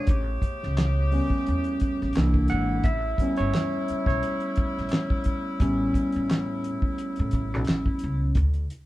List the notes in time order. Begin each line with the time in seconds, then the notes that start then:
Already playing: D4 C#5 D5
0.07 A1 C#3 A3 B3 G4, kick, closed hi-hat
0.42 kick, closed hi-hat
0.63 C#2, snare
0.77 snare, clap, closed hi-hat
1.12 G3 B3 C#4, open hi-hat
1.30 kick
1.46 E2, closed hi-hat
1.64 closed hi-hat
1.80 kick, closed hi-hat
2.02 A1, snare
2.13 D3 E3 A#3 C4 E4, clap, closed hi-hat
2.17 C2 D4, snare
2.34 kick
2.48 G#1 F#5, closed hi-hat
2.84 A1 C#3 G3 A3 E5, kick, closed hi-hat
3.18 G3 B3 C#4, kick, closed hi-hat
3.36 G1 C#5, closed hi-hat
3.54 snare, clap, closed hi-hat
3.88 muted upright bass stroke, closed hi-hat
4.06 B1 C#5, kick, snare
4.23 closed hi-hat
4.40 closed hi-hat
4.56 muted upright bass stroke, kick, closed hi-hat
4.78 A1, snare
4.89 clap, closed hi-hat
4.93 snare
5.10 kick
5.24 kick, closed hi-hat
5.60 A1 G3 B3 C#4, kick, closed hi-hat
5.94 kick, closed hi-hat
6.12 A1, closed hi-hat
6.30 snare, clap, closed hi-hat
6.64 closed hi-hat
6.82 kick
6.98 closed hi-hat
7.16 A2, closed hi-hat
7.31 A1, kick, closed hi-hat
7.54 B1, snare
7.65 clap, closed hi-hat
7.69 A1, snare
7.86 kick
7.99 closed hi-hat
8.04 C#2
8.35 D2, kick, closed hi-hat
8.54 closed hi-hat
8.70 closed hi-hat